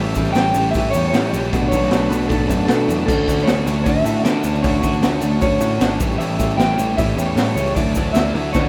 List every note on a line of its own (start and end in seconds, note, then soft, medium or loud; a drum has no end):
0.00 0.13 A1 medium
0.00 0.14 A2 loud
0.00 0.15 E3 loud
0.00 0.16 G3 loud
0.00 0.16 C#4 loud
0.00 0.17 G4 loud
0.00 1.51 G4 medium
0.00 1.51 C#5 medium
0.00 0.32 E5 loud
0.00 1.51 A5 medium
0.15 0.33 A1 medium
0.15 0.35 A2 medium
0.15 0.36 E3 medium
0.15 0.36 G3 medium
0.15 0.37 C#4 medium
0.15 0.37 G4 loud
0.15 kick medium
0.15 open hi-hat medium
0.15 shaker medium
0.25 snare soft
0.25 shaker soft
0.33 0.52 A1 medium
0.33 0.52 A2 medium
0.33 0.70 G5 loud
0.33 snare loud
0.33 open hi-hat medium
0.33 shaker medium
0.37 0.53 E3 medium
0.37 0.54 G3 medium
0.37 0.55 C#4 loud
0.37 0.55 G4 loud
0.54 0.72 A1 medium
0.54 0.73 A2 medium
0.54 0.74 E3 loud
0.54 0.74 G3 loud
0.54 0.74 C#4 loud
0.54 0.74 G4 loud
0.54 open hi-hat medium
0.54 shaker medium
0.71 0.93 A2 medium
0.71 0.90 E5 loud
0.71 shaker medium
0.75 0.92 A1 medium
0.75 0.93 E3 loud
0.75 0.94 G3 medium
0.75 0.94 C#4 loud
0.75 0.94 G4 loud
0.75 kick loud
0.75 open hi-hat medium
0.90 1.12 A2 loud
0.90 1.12 E3 loud
0.90 1.07 C#5 loud
0.90 shaker medium
0.94 1.12 E2 medium
0.94 1.13 G3 loud
0.94 1.14 C#4 loud
0.94 1.14 G4 loud
0.94 open hi-hat medium
1.08 1.29 C#5 loud
1.13 1.31 A2 medium
1.13 1.30 A2 loud
1.13 1.33 E3 medium
1.13 1.33 G3 medium
1.13 1.34 C#4 medium
1.13 1.35 G4 loud
1.13 snare loud
1.13 open hi-hat medium
1.13 shaker medium
1.29 1.50 A#1 medium
1.29 1.51 A2 medium
1.29 1.68 D5 loud
1.33 1.52 E3 medium
1.33 1.52 G3 medium
1.33 1.52 C#4 medium
1.33 1.53 G4 medium
1.33 open hi-hat medium
1.33 shaker loud
1.44 shaker soft
1.52 1.70 B1 loud
1.52 1.70 B2 loud
1.52 1.72 F#3 loud
1.52 1.73 A3 loud
1.52 1.71 B3 loud
1.52 1.73 D4 loud
1.52 5.98 D4 medium
1.52 1.74 F#4 medium
1.52 3.08 A4 medium
1.52 3.08 B5 medium
1.52 kick loud
1.52 open hi-hat medium
1.52 shaker medium
1.68 1.91 B2 medium
1.68 1.92 F#3 medium
1.68 1.91 B3 medium
1.68 2.10 C#5 loud
1.68 kick medium
1.68 open hi-hat medium
1.72 1.89 B1 medium
1.72 1.93 A3 medium
1.72 1.93 D4 medium
1.72 1.94 F#4 loud
1.72 shaker loud
1.81 snare soft
1.81 shaker soft
1.91 2.08 B1 medium
1.91 2.09 B2 medium
1.91 2.11 F#3 medium
1.91 2.12 A3 loud
1.91 2.09 B3 medium
1.91 2.12 D4 medium
1.91 2.13 F#4 loud
1.91 snare loud
1.91 open hi-hat medium
1.91 shaker medium
2.09 2.28 B1 medium
2.09 2.29 B2 medium
2.09 2.31 F#3 medium
2.09 2.32 A3 loud
2.09 2.28 B3 loud
2.09 2.32 D4 medium
2.09 2.33 F#4 medium
2.09 2.27 B4 medium
2.09 open hi-hat medium
2.09 shaker medium
2.22 shaker soft
2.28 2.47 B1 medium
2.28 2.48 B2 medium
2.28 2.50 F#3 medium
2.28 2.48 B3 medium
2.28 2.46 A4 medium
2.28 kick loud
2.28 open hi-hat medium
2.28 shaker medium
2.32 2.50 A3 loud
2.32 2.51 D4 medium
2.32 2.52 F#4 loud
2.47 2.67 F#2 medium
2.47 2.68 B2 loud
2.47 2.69 F#3 medium
2.47 2.70 A3 loud
2.47 2.67 B3 medium
2.47 2.64 A4 medium
2.47 kick medium
2.47 open hi-hat medium
2.47 shaker medium
2.52 2.70 D4 loud
2.52 2.71 F#4 loud
2.65 2.86 B2 medium
2.65 2.87 B2 medium
2.65 2.88 F#3 medium
2.65 2.87 B3 medium
2.65 2.94 A4 medium
2.65 snare loud
2.65 open hi-hat medium
2.70 2.89 A3 medium
2.70 2.90 D4 medium
2.70 2.90 F#4 loud
2.70 shaker medium
2.88 3.05 E2 medium
2.88 3.07 B2 medium
2.88 3.06 F#3 medium
2.88 3.07 A3 medium
2.88 3.07 B3 loud
2.88 3.07 D4 medium
2.88 3.08 F#4 medium
2.88 open hi-hat medium
2.88 shaker medium
3.06 3.25 D2 medium
3.06 3.26 D3 loud
3.06 3.26 A3 medium
3.06 3.27 C#4 loud
3.06 3.28 D4 loud
3.06 3.28 F#4 loud
3.06 3.47 A4 medium
3.06 kick loud
3.06 crash medium
3.06 shaker medium
3.11 5.99 F#4 medium
3.11 7.74 C#6 medium
3.26 3.45 D2 medium
3.26 3.45 D3 medium
3.26 3.45 A3 medium
3.26 3.46 C#4 medium
3.26 3.48 D4 medium
3.26 3.46 F#4 medium
3.26 kick medium
3.26 open hi-hat medium
3.26 shaker medium
3.39 snare soft
3.39 shaker soft
3.43 3.63 D3 medium
3.43 3.65 A3 medium
3.43 3.65 C#4 medium
3.43 3.65 F#4 loud
3.43 3.83 C#5 medium
3.47 3.64 D2 medium
3.47 3.66 D4 medium
3.47 snare loud
3.47 open hi-hat medium
3.47 shaker medium
3.64 3.84 D2 medium
3.64 3.83 D3 loud
3.64 3.85 A3 medium
3.64 3.86 C#4 loud
3.64 3.85 D4 loud
3.64 3.85 F#4 medium
3.64 open hi-hat medium
3.64 shaker medium
3.84 4.03 D2 medium
3.84 4.03 D3 medium
3.84 4.04 A3 medium
3.84 4.06 C#4 medium
3.84 4.03 D4 medium
3.84 4.05 F#4 loud
3.84 4.24 E5 loud
3.84 kick loud
3.84 open hi-hat medium
3.84 shaker medium
4.04 4.23 A2 medium
4.04 4.22 D3 medium
4.04 4.23 A3 medium
4.04 4.24 C#4 medium
4.04 4.24 D4 medium
4.04 4.24 F#4 loud
4.04 open hi-hat medium
4.04 shaker loud
4.23 4.42 D3 medium
4.23 4.43 A3 medium
4.23 4.43 C#4 medium
4.23 4.44 D4 medium
4.23 4.43 F#4 medium
4.23 4.61 D5 medium
4.23 snare loud
4.23 open hi-hat medium
4.23 shaker medium
4.43 4.61 D2 medium
4.43 4.60 D3 medium
4.43 4.62 A3 medium
4.43 4.62 C#4 medium
4.43 4.63 D4 medium
4.43 4.62 F#4 medium
4.43 open hi-hat medium
4.43 shaker loud
4.55 shaker soft
4.61 4.81 D2 medium
4.61 4.80 D3 loud
4.61 4.82 A3 loud
4.61 4.82 C#4 loud
4.61 4.82 D4 loud
4.61 4.82 F#4 loud
4.61 5.40 C#5 loud
4.61 kick loud
4.61 open hi-hat medium
4.61 shaker medium
4.81 5.01 D2 medium
4.81 5.00 D3 medium
4.81 5.01 A3 loud
4.81 5.02 C#4 medium
4.81 5.02 D4 medium
4.81 5.01 F#4 loud
4.81 kick medium
4.81 open hi-hat medium
4.81 shaker medium
4.93 shaker soft
5.01 5.20 D2 medium
5.01 5.19 D3 medium
5.01 5.20 A3 medium
5.01 5.21 C#4 medium
5.01 5.21 D4 medium
5.01 5.21 F#4 loud
5.01 snare loud
5.01 open hi-hat medium
5.01 shaker medium
5.20 5.40 D2 medium
5.20 5.39 D3 medium
5.20 5.40 A3 medium
5.20 5.40 C#4 loud
5.20 5.41 D4 medium
5.20 5.41 F#4 loud
5.20 open hi-hat medium
5.20 shaker medium
5.40 5.59 D2 medium
5.40 5.59 D3 medium
5.40 5.59 A3 medium
5.40 5.60 C#4 medium
5.40 5.61 D4 medium
5.40 5.60 F#4 loud
5.40 5.96 C#5 medium
5.40 kick loud
5.40 open hi-hat medium
5.40 shaker medium
5.60 5.78 A2 medium
5.60 5.78 D3 medium
5.60 5.80 A3 medium
5.60 5.79 C#4 loud
5.60 5.80 D4 medium
5.60 5.80 F#4 loud
5.60 open hi-hat medium
5.60 shaker loud
5.79 5.98 G#1 medium
5.79 5.98 D3 medium
5.79 5.99 A3 loud
5.79 5.98 C#4 loud
5.79 5.99 D4 medium
5.79 6.00 F#4 loud
5.79 snare loud
5.79 open hi-hat medium
5.79 shaker medium
5.98 6.18 A1 medium
5.98 6.17 A2 medium
5.98 6.19 E3 loud
5.98 6.18 G3 medium
5.98 6.19 C#4 medium
5.98 6.20 E4 loud
5.98 7.75 G5 medium
5.98 kick loud
5.98 open hi-hat medium
5.98 shaker loud
6.02 6.19 G4 loud
6.02 7.75 A4 medium
6.12 shaker soft
6.18 6.37 A1 medium
6.18 6.36 A2 loud
6.18 6.37 E3 loud
6.18 6.37 G3 loud
6.18 6.38 C#4 loud
6.18 6.40 E4 loud
6.18 6.39 G4 loud
6.18 6.57 E5 loud
6.18 open hi-hat medium
6.18 shaker medium
6.38 6.56 A1 medium
6.38 6.55 A2 medium
6.38 6.56 E3 medium
6.38 6.57 G3 medium
6.38 6.57 C#4 medium
6.38 6.58 E4 medium
6.38 6.59 G4 loud
6.38 kick medium
6.38 open hi-hat medium
6.38 shaker medium
6.50 shaker soft
6.57 6.75 A1 medium
6.57 6.74 A2 medium
6.57 6.76 E3 medium
6.57 6.75 G3 medium
6.57 6.76 C#4 medium
6.57 6.77 E4 loud
6.57 6.78 G4 medium
6.57 6.97 G5 medium
6.57 snare loud
6.57 open hi-hat medium
6.57 shaker medium
6.76 6.95 A1 medium
6.76 6.94 A2 medium
6.76 6.95 E3 medium
6.76 6.96 G3 medium
6.76 6.96 C#4 loud
6.76 6.97 E4 loud
6.76 6.98 G4 loud
6.76 open hi-hat medium
6.76 shaker loud
6.96 7.15 A1 medium
6.96 7.14 A2 medium
6.96 7.15 E3 medium
6.96 7.16 G3 medium
6.96 7.16 C#4 medium
6.96 7.17 E4 loud
6.96 7.18 E5 loud
6.96 kick loud
6.96 open hi-hat medium
6.96 shaker medium
7.00 7.18 G4 loud
7.15 7.34 E2 medium
7.15 7.34 A2 loud
7.15 7.36 E3 loud
7.15 7.36 G3 loud
7.15 7.37 C#4 loud
7.15 7.37 E4 loud
7.15 7.38 G4 medium
7.15 7.54 C#5 loud
7.15 open hi-hat medium
7.15 shaker loud
7.36 7.54 A2 medium
7.36 7.55 E3 medium
7.36 7.55 G3 medium
7.36 7.56 C#4 loud
7.36 7.56 E4 medium
7.36 7.58 G4 medium
7.36 snare loud
7.36 open hi-hat medium
7.36 shaker medium
7.55 7.73 C#2 medium
7.55 7.74 A2 medium
7.55 7.74 E3 medium
7.55 7.75 G3 medium
7.55 7.75 C#4 medium
7.55 7.75 E4 medium
7.55 7.75 C#5 medium
7.55 open hi-hat medium
7.55 shaker loud
7.59 7.76 G4 loud
7.66 shaker soft
7.75 7.93 D2 medium
7.75 7.94 D3 loud
7.75 7.95 F#3 loud
7.75 7.96 A3 loud
7.75 7.94 D4 loud
7.75 7.96 E4 loud
7.75 8.69 F#4 medium
7.75 7.95 F#4 loud
7.75 8.12 D5 medium
7.75 8.69 E5 medium
7.75 8.69 D6 medium
7.75 kick loud
7.75 open hi-hat medium
7.75 shaker medium
7.95 8.13 D2 loud
7.95 8.13 D3 medium
7.95 8.15 F#3 medium
7.95 8.15 A3 medium
7.95 8.15 D4 medium
7.95 8.15 E4 loud
7.95 8.15 F#4 medium
7.95 kick medium
7.95 open hi-hat medium
7.95 shaker loud
8.13 8.32 D2 medium
8.13 8.32 D3 medium
8.13 8.33 F#3 medium
8.13 8.34 A3 medium
8.13 8.36 D4 medium
8.13 8.34 E4 medium
8.13 8.35 F#4 loud
8.13 8.52 E5 medium
8.13 snare loud
8.13 open hi-hat medium
8.13 shaker medium
8.34 8.51 D2 medium
8.34 8.54 D3 medium
8.34 8.55 F#3 loud
8.34 8.55 A3 medium
8.34 8.55 D4 medium
8.34 8.56 E4 loud
8.34 8.55 F#4 loud
8.34 open hi-hat medium
8.53 8.69 D2 medium
8.53 8.69 D3 medium
8.53 8.69 F#3 medium
8.53 8.69 A3 medium
8.53 8.69 D4 loud
8.53 8.69 F#4 medium
8.53 8.69 C#5 medium
8.53 kick loud
8.53 snare medium
8.53 shaker medium
8.57 8.69 E4 loud